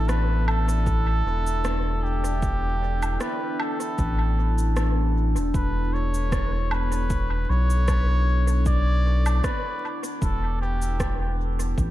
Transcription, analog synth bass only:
0.00 1.22 A1 medium
1.26 3.17 E1 medium
3.99 5.38 A1 medium
5.36 5.52 E1 medium
5.54 7.46 E1 loud
7.49 9.41 B1 loud
10.22 11.74 E1 medium
11.78 11.91 A1 loud

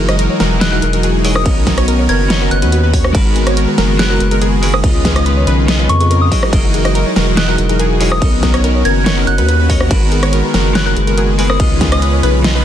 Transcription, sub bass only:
0.00 0.28 F#1 loud
0.40 0.81 E1 medium
0.82 1.47 E1 medium
1.46 2.08 B1 medium
2.09 2.50 F#1 medium
2.51 2.64 F#1 medium
2.62 3.13 D#2 loud
3.15 3.67 G#1 loud
3.78 4.19 F#1 medium
4.20 4.85 F#1 medium
4.84 5.46 C#2 medium
5.47 5.88 B1 loud
5.89 6.30 F2 loud
6.53 7.05 F#1 loud
7.16 7.57 E1 medium
7.58 8.20 E1 medium
8.22 8.84 B1 medium
8.85 9.26 F#1 medium
9.27 9.40 F#1 medium
9.38 9.90 D#2 loud
9.91 10.43 G#1 loud
10.54 10.95 F#1 medium
10.96 11.61 F#1 medium
11.60 12.22 C#2 medium
12.23 12.64 B1 medium

